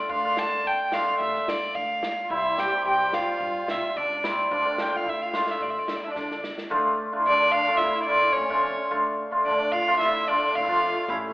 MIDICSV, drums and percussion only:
0, 0, Header, 1, 2, 480
1, 0, Start_track
1, 0, Key_signature, -1, "minor"
1, 0, Tempo, 551471
1, 85, Time_signature, 4, 2, 24, 8
1, 5844, Tempo, 545455
1, 5845, Key_signature, -1, "minor"
1, 9908, End_track
2, 0, Start_track
2, 0, Title_t, "Drums"
2, 82, Note_on_c, 9, 36, 85
2, 169, Note_off_c, 9, 36, 0
2, 320, Note_on_c, 9, 38, 82
2, 407, Note_off_c, 9, 38, 0
2, 562, Note_on_c, 9, 36, 55
2, 649, Note_off_c, 9, 36, 0
2, 800, Note_on_c, 9, 38, 82
2, 887, Note_off_c, 9, 38, 0
2, 1047, Note_on_c, 9, 36, 71
2, 1134, Note_off_c, 9, 36, 0
2, 1175, Note_on_c, 9, 38, 30
2, 1262, Note_off_c, 9, 38, 0
2, 1289, Note_on_c, 9, 38, 95
2, 1376, Note_off_c, 9, 38, 0
2, 1525, Note_on_c, 9, 36, 68
2, 1613, Note_off_c, 9, 36, 0
2, 1765, Note_on_c, 9, 38, 85
2, 1852, Note_off_c, 9, 38, 0
2, 2004, Note_on_c, 9, 36, 87
2, 2091, Note_off_c, 9, 36, 0
2, 2244, Note_on_c, 9, 38, 79
2, 2331, Note_off_c, 9, 38, 0
2, 2486, Note_on_c, 9, 36, 65
2, 2573, Note_off_c, 9, 36, 0
2, 2614, Note_on_c, 9, 38, 21
2, 2701, Note_off_c, 9, 38, 0
2, 2722, Note_on_c, 9, 38, 79
2, 2809, Note_off_c, 9, 38, 0
2, 2966, Note_on_c, 9, 36, 77
2, 3053, Note_off_c, 9, 36, 0
2, 3205, Note_on_c, 9, 38, 89
2, 3292, Note_off_c, 9, 38, 0
2, 3446, Note_on_c, 9, 36, 75
2, 3533, Note_off_c, 9, 36, 0
2, 3690, Note_on_c, 9, 38, 97
2, 3778, Note_off_c, 9, 38, 0
2, 3928, Note_on_c, 9, 36, 74
2, 4015, Note_off_c, 9, 36, 0
2, 4163, Note_on_c, 9, 38, 89
2, 4250, Note_off_c, 9, 38, 0
2, 4406, Note_on_c, 9, 36, 68
2, 4494, Note_off_c, 9, 36, 0
2, 4644, Note_on_c, 9, 38, 83
2, 4731, Note_off_c, 9, 38, 0
2, 4757, Note_on_c, 9, 38, 60
2, 4844, Note_off_c, 9, 38, 0
2, 4882, Note_on_c, 9, 36, 80
2, 4969, Note_off_c, 9, 36, 0
2, 5118, Note_on_c, 9, 38, 86
2, 5206, Note_off_c, 9, 38, 0
2, 5239, Note_on_c, 9, 38, 23
2, 5326, Note_off_c, 9, 38, 0
2, 5359, Note_on_c, 9, 38, 53
2, 5364, Note_on_c, 9, 36, 79
2, 5446, Note_off_c, 9, 38, 0
2, 5451, Note_off_c, 9, 36, 0
2, 5492, Note_on_c, 9, 38, 50
2, 5579, Note_off_c, 9, 38, 0
2, 5604, Note_on_c, 9, 38, 76
2, 5691, Note_off_c, 9, 38, 0
2, 5725, Note_on_c, 9, 38, 71
2, 5812, Note_off_c, 9, 38, 0
2, 9689, Note_on_c, 9, 38, 30
2, 9690, Note_on_c, 9, 36, 92
2, 9777, Note_off_c, 9, 38, 0
2, 9778, Note_off_c, 9, 36, 0
2, 9908, End_track
0, 0, End_of_file